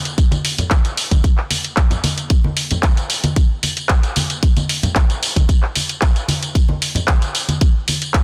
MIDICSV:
0, 0, Header, 1, 2, 480
1, 0, Start_track
1, 0, Tempo, 530973
1, 162, Time_signature, 4, 2, 24, 8
1, 7444, End_track
2, 0, Start_track
2, 0, Title_t, "Drums"
2, 48, Note_on_c, 9, 42, 47
2, 51, Note_on_c, 9, 54, 31
2, 138, Note_off_c, 9, 42, 0
2, 142, Note_off_c, 9, 54, 0
2, 162, Note_on_c, 9, 36, 115
2, 162, Note_on_c, 9, 42, 60
2, 166, Note_on_c, 9, 54, 41
2, 252, Note_off_c, 9, 36, 0
2, 252, Note_off_c, 9, 42, 0
2, 256, Note_off_c, 9, 54, 0
2, 283, Note_on_c, 9, 63, 100
2, 288, Note_on_c, 9, 42, 32
2, 292, Note_on_c, 9, 54, 28
2, 373, Note_off_c, 9, 63, 0
2, 379, Note_off_c, 9, 42, 0
2, 382, Note_off_c, 9, 54, 0
2, 404, Note_on_c, 9, 46, 105
2, 407, Note_on_c, 9, 54, 71
2, 494, Note_off_c, 9, 46, 0
2, 498, Note_off_c, 9, 54, 0
2, 528, Note_on_c, 9, 42, 48
2, 528, Note_on_c, 9, 64, 81
2, 532, Note_on_c, 9, 54, 31
2, 618, Note_off_c, 9, 42, 0
2, 619, Note_off_c, 9, 64, 0
2, 622, Note_off_c, 9, 54, 0
2, 638, Note_on_c, 9, 39, 110
2, 642, Note_on_c, 9, 36, 113
2, 642, Note_on_c, 9, 42, 59
2, 646, Note_on_c, 9, 54, 41
2, 646, Note_on_c, 9, 63, 66
2, 729, Note_off_c, 9, 39, 0
2, 732, Note_off_c, 9, 36, 0
2, 733, Note_off_c, 9, 42, 0
2, 736, Note_off_c, 9, 54, 0
2, 737, Note_off_c, 9, 63, 0
2, 767, Note_on_c, 9, 42, 33
2, 770, Note_on_c, 9, 54, 29
2, 857, Note_off_c, 9, 42, 0
2, 861, Note_off_c, 9, 54, 0
2, 880, Note_on_c, 9, 46, 92
2, 884, Note_on_c, 9, 54, 73
2, 971, Note_off_c, 9, 46, 0
2, 975, Note_off_c, 9, 54, 0
2, 1007, Note_on_c, 9, 36, 61
2, 1007, Note_on_c, 9, 42, 48
2, 1007, Note_on_c, 9, 63, 87
2, 1010, Note_on_c, 9, 54, 30
2, 1097, Note_off_c, 9, 36, 0
2, 1097, Note_off_c, 9, 42, 0
2, 1097, Note_off_c, 9, 63, 0
2, 1101, Note_off_c, 9, 54, 0
2, 1122, Note_on_c, 9, 36, 120
2, 1123, Note_on_c, 9, 42, 59
2, 1127, Note_on_c, 9, 54, 41
2, 1212, Note_off_c, 9, 36, 0
2, 1213, Note_off_c, 9, 42, 0
2, 1217, Note_off_c, 9, 54, 0
2, 1244, Note_on_c, 9, 39, 34
2, 1334, Note_off_c, 9, 39, 0
2, 1361, Note_on_c, 9, 46, 101
2, 1361, Note_on_c, 9, 63, 58
2, 1364, Note_on_c, 9, 54, 73
2, 1451, Note_off_c, 9, 46, 0
2, 1451, Note_off_c, 9, 63, 0
2, 1455, Note_off_c, 9, 54, 0
2, 1487, Note_on_c, 9, 42, 48
2, 1491, Note_on_c, 9, 54, 30
2, 1577, Note_off_c, 9, 42, 0
2, 1581, Note_off_c, 9, 54, 0
2, 1598, Note_on_c, 9, 39, 112
2, 1601, Note_on_c, 9, 36, 116
2, 1602, Note_on_c, 9, 42, 60
2, 1605, Note_on_c, 9, 54, 42
2, 1688, Note_off_c, 9, 39, 0
2, 1692, Note_off_c, 9, 36, 0
2, 1692, Note_off_c, 9, 42, 0
2, 1696, Note_off_c, 9, 54, 0
2, 1721, Note_on_c, 9, 64, 72
2, 1726, Note_on_c, 9, 42, 34
2, 1729, Note_on_c, 9, 54, 28
2, 1812, Note_off_c, 9, 64, 0
2, 1816, Note_off_c, 9, 42, 0
2, 1820, Note_off_c, 9, 54, 0
2, 1841, Note_on_c, 9, 46, 91
2, 1842, Note_on_c, 9, 63, 95
2, 1845, Note_on_c, 9, 54, 72
2, 1932, Note_off_c, 9, 46, 0
2, 1932, Note_off_c, 9, 63, 0
2, 1935, Note_off_c, 9, 54, 0
2, 1967, Note_on_c, 9, 42, 46
2, 1970, Note_on_c, 9, 54, 31
2, 2057, Note_off_c, 9, 42, 0
2, 2061, Note_off_c, 9, 54, 0
2, 2079, Note_on_c, 9, 42, 60
2, 2081, Note_on_c, 9, 36, 113
2, 2083, Note_on_c, 9, 54, 43
2, 2169, Note_off_c, 9, 42, 0
2, 2171, Note_off_c, 9, 36, 0
2, 2173, Note_off_c, 9, 54, 0
2, 2208, Note_on_c, 9, 63, 89
2, 2298, Note_off_c, 9, 63, 0
2, 2320, Note_on_c, 9, 46, 101
2, 2323, Note_on_c, 9, 54, 75
2, 2410, Note_off_c, 9, 46, 0
2, 2414, Note_off_c, 9, 54, 0
2, 2446, Note_on_c, 9, 42, 48
2, 2450, Note_on_c, 9, 54, 31
2, 2452, Note_on_c, 9, 64, 79
2, 2537, Note_off_c, 9, 42, 0
2, 2540, Note_off_c, 9, 54, 0
2, 2542, Note_off_c, 9, 64, 0
2, 2558, Note_on_c, 9, 39, 106
2, 2561, Note_on_c, 9, 36, 109
2, 2562, Note_on_c, 9, 42, 60
2, 2565, Note_on_c, 9, 54, 42
2, 2566, Note_on_c, 9, 63, 60
2, 2648, Note_off_c, 9, 39, 0
2, 2651, Note_off_c, 9, 36, 0
2, 2652, Note_off_c, 9, 42, 0
2, 2656, Note_off_c, 9, 54, 0
2, 2656, Note_off_c, 9, 63, 0
2, 2687, Note_on_c, 9, 42, 35
2, 2691, Note_on_c, 9, 54, 30
2, 2777, Note_off_c, 9, 42, 0
2, 2781, Note_off_c, 9, 54, 0
2, 2800, Note_on_c, 9, 46, 88
2, 2803, Note_on_c, 9, 54, 74
2, 2890, Note_off_c, 9, 46, 0
2, 2894, Note_off_c, 9, 54, 0
2, 2926, Note_on_c, 9, 42, 47
2, 2926, Note_on_c, 9, 63, 94
2, 2929, Note_on_c, 9, 54, 32
2, 3016, Note_off_c, 9, 42, 0
2, 3017, Note_off_c, 9, 63, 0
2, 3020, Note_off_c, 9, 54, 0
2, 3040, Note_on_c, 9, 42, 60
2, 3041, Note_on_c, 9, 36, 113
2, 3044, Note_on_c, 9, 54, 43
2, 3131, Note_off_c, 9, 36, 0
2, 3131, Note_off_c, 9, 42, 0
2, 3134, Note_off_c, 9, 54, 0
2, 3281, Note_on_c, 9, 46, 98
2, 3284, Note_on_c, 9, 63, 57
2, 3285, Note_on_c, 9, 54, 72
2, 3371, Note_off_c, 9, 46, 0
2, 3374, Note_off_c, 9, 63, 0
2, 3375, Note_off_c, 9, 54, 0
2, 3406, Note_on_c, 9, 42, 48
2, 3410, Note_on_c, 9, 54, 31
2, 3497, Note_off_c, 9, 42, 0
2, 3500, Note_off_c, 9, 54, 0
2, 3518, Note_on_c, 9, 39, 109
2, 3521, Note_on_c, 9, 42, 59
2, 3522, Note_on_c, 9, 36, 108
2, 3525, Note_on_c, 9, 54, 42
2, 3608, Note_off_c, 9, 39, 0
2, 3612, Note_off_c, 9, 36, 0
2, 3612, Note_off_c, 9, 42, 0
2, 3615, Note_off_c, 9, 54, 0
2, 3646, Note_on_c, 9, 42, 34
2, 3650, Note_on_c, 9, 54, 30
2, 3737, Note_off_c, 9, 42, 0
2, 3740, Note_off_c, 9, 54, 0
2, 3760, Note_on_c, 9, 46, 87
2, 3764, Note_on_c, 9, 54, 74
2, 3765, Note_on_c, 9, 63, 87
2, 3851, Note_off_c, 9, 46, 0
2, 3854, Note_off_c, 9, 54, 0
2, 3855, Note_off_c, 9, 63, 0
2, 3887, Note_on_c, 9, 42, 48
2, 3890, Note_on_c, 9, 54, 33
2, 3977, Note_off_c, 9, 42, 0
2, 3981, Note_off_c, 9, 54, 0
2, 4002, Note_on_c, 9, 36, 109
2, 4002, Note_on_c, 9, 42, 63
2, 4005, Note_on_c, 9, 54, 45
2, 4092, Note_off_c, 9, 42, 0
2, 4093, Note_off_c, 9, 36, 0
2, 4096, Note_off_c, 9, 54, 0
2, 4128, Note_on_c, 9, 42, 35
2, 4129, Note_on_c, 9, 63, 87
2, 4131, Note_on_c, 9, 54, 30
2, 4218, Note_off_c, 9, 42, 0
2, 4219, Note_off_c, 9, 63, 0
2, 4222, Note_off_c, 9, 54, 0
2, 4243, Note_on_c, 9, 46, 100
2, 4247, Note_on_c, 9, 54, 79
2, 4334, Note_off_c, 9, 46, 0
2, 4337, Note_off_c, 9, 54, 0
2, 4367, Note_on_c, 9, 64, 88
2, 4370, Note_on_c, 9, 42, 49
2, 4373, Note_on_c, 9, 54, 33
2, 4458, Note_off_c, 9, 64, 0
2, 4460, Note_off_c, 9, 42, 0
2, 4464, Note_off_c, 9, 54, 0
2, 4480, Note_on_c, 9, 39, 106
2, 4480, Note_on_c, 9, 63, 61
2, 4483, Note_on_c, 9, 36, 107
2, 4484, Note_on_c, 9, 42, 60
2, 4487, Note_on_c, 9, 54, 44
2, 4570, Note_off_c, 9, 39, 0
2, 4570, Note_off_c, 9, 63, 0
2, 4573, Note_off_c, 9, 36, 0
2, 4574, Note_off_c, 9, 42, 0
2, 4578, Note_off_c, 9, 54, 0
2, 4609, Note_on_c, 9, 42, 35
2, 4612, Note_on_c, 9, 54, 31
2, 4699, Note_off_c, 9, 42, 0
2, 4703, Note_off_c, 9, 54, 0
2, 4724, Note_on_c, 9, 46, 86
2, 4728, Note_on_c, 9, 54, 78
2, 4815, Note_off_c, 9, 46, 0
2, 4818, Note_off_c, 9, 54, 0
2, 4848, Note_on_c, 9, 36, 56
2, 4848, Note_on_c, 9, 63, 91
2, 4849, Note_on_c, 9, 42, 49
2, 4853, Note_on_c, 9, 54, 33
2, 4938, Note_off_c, 9, 36, 0
2, 4938, Note_off_c, 9, 63, 0
2, 4939, Note_off_c, 9, 42, 0
2, 4943, Note_off_c, 9, 54, 0
2, 4962, Note_on_c, 9, 36, 109
2, 4964, Note_on_c, 9, 42, 61
2, 4967, Note_on_c, 9, 54, 45
2, 5053, Note_off_c, 9, 36, 0
2, 5054, Note_off_c, 9, 42, 0
2, 5058, Note_off_c, 9, 54, 0
2, 5085, Note_on_c, 9, 39, 33
2, 5175, Note_off_c, 9, 39, 0
2, 5202, Note_on_c, 9, 46, 92
2, 5206, Note_on_c, 9, 54, 76
2, 5209, Note_on_c, 9, 63, 55
2, 5293, Note_off_c, 9, 46, 0
2, 5296, Note_off_c, 9, 54, 0
2, 5299, Note_off_c, 9, 63, 0
2, 5328, Note_on_c, 9, 42, 51
2, 5332, Note_on_c, 9, 54, 34
2, 5418, Note_off_c, 9, 42, 0
2, 5422, Note_off_c, 9, 54, 0
2, 5439, Note_on_c, 9, 39, 108
2, 5443, Note_on_c, 9, 36, 108
2, 5443, Note_on_c, 9, 42, 64
2, 5446, Note_on_c, 9, 54, 43
2, 5529, Note_off_c, 9, 39, 0
2, 5533, Note_off_c, 9, 36, 0
2, 5533, Note_off_c, 9, 42, 0
2, 5537, Note_off_c, 9, 54, 0
2, 5569, Note_on_c, 9, 42, 35
2, 5572, Note_on_c, 9, 54, 30
2, 5659, Note_off_c, 9, 42, 0
2, 5663, Note_off_c, 9, 54, 0
2, 5679, Note_on_c, 9, 63, 89
2, 5683, Note_on_c, 9, 46, 84
2, 5686, Note_on_c, 9, 54, 75
2, 5769, Note_off_c, 9, 63, 0
2, 5773, Note_off_c, 9, 46, 0
2, 5777, Note_off_c, 9, 54, 0
2, 5809, Note_on_c, 9, 42, 51
2, 5812, Note_on_c, 9, 54, 33
2, 5899, Note_off_c, 9, 42, 0
2, 5903, Note_off_c, 9, 54, 0
2, 5923, Note_on_c, 9, 36, 105
2, 5924, Note_on_c, 9, 42, 65
2, 5928, Note_on_c, 9, 54, 44
2, 6013, Note_off_c, 9, 36, 0
2, 6015, Note_off_c, 9, 42, 0
2, 6018, Note_off_c, 9, 54, 0
2, 6044, Note_on_c, 9, 63, 89
2, 6134, Note_off_c, 9, 63, 0
2, 6164, Note_on_c, 9, 46, 96
2, 6168, Note_on_c, 9, 54, 80
2, 6255, Note_off_c, 9, 46, 0
2, 6258, Note_off_c, 9, 54, 0
2, 6282, Note_on_c, 9, 64, 81
2, 6289, Note_on_c, 9, 42, 52
2, 6293, Note_on_c, 9, 54, 33
2, 6372, Note_off_c, 9, 64, 0
2, 6380, Note_off_c, 9, 42, 0
2, 6383, Note_off_c, 9, 54, 0
2, 6399, Note_on_c, 9, 39, 111
2, 6402, Note_on_c, 9, 42, 63
2, 6403, Note_on_c, 9, 36, 102
2, 6405, Note_on_c, 9, 63, 57
2, 6406, Note_on_c, 9, 54, 45
2, 6489, Note_off_c, 9, 39, 0
2, 6493, Note_off_c, 9, 36, 0
2, 6493, Note_off_c, 9, 42, 0
2, 6495, Note_off_c, 9, 63, 0
2, 6496, Note_off_c, 9, 54, 0
2, 6527, Note_on_c, 9, 42, 36
2, 6531, Note_on_c, 9, 54, 32
2, 6618, Note_off_c, 9, 42, 0
2, 6621, Note_off_c, 9, 54, 0
2, 6642, Note_on_c, 9, 46, 86
2, 6646, Note_on_c, 9, 54, 80
2, 6732, Note_off_c, 9, 46, 0
2, 6736, Note_off_c, 9, 54, 0
2, 6766, Note_on_c, 9, 63, 84
2, 6768, Note_on_c, 9, 42, 53
2, 6772, Note_on_c, 9, 54, 34
2, 6856, Note_off_c, 9, 63, 0
2, 6859, Note_off_c, 9, 42, 0
2, 6862, Note_off_c, 9, 54, 0
2, 6881, Note_on_c, 9, 42, 64
2, 6882, Note_on_c, 9, 36, 109
2, 6885, Note_on_c, 9, 54, 46
2, 6971, Note_off_c, 9, 42, 0
2, 6973, Note_off_c, 9, 36, 0
2, 6975, Note_off_c, 9, 54, 0
2, 7121, Note_on_c, 9, 46, 94
2, 7125, Note_on_c, 9, 54, 78
2, 7128, Note_on_c, 9, 63, 60
2, 7212, Note_off_c, 9, 46, 0
2, 7215, Note_off_c, 9, 54, 0
2, 7219, Note_off_c, 9, 63, 0
2, 7248, Note_on_c, 9, 42, 52
2, 7251, Note_on_c, 9, 54, 34
2, 7338, Note_off_c, 9, 42, 0
2, 7342, Note_off_c, 9, 54, 0
2, 7358, Note_on_c, 9, 39, 113
2, 7362, Note_on_c, 9, 36, 106
2, 7362, Note_on_c, 9, 42, 65
2, 7444, Note_off_c, 9, 36, 0
2, 7444, Note_off_c, 9, 39, 0
2, 7444, Note_off_c, 9, 42, 0
2, 7444, End_track
0, 0, End_of_file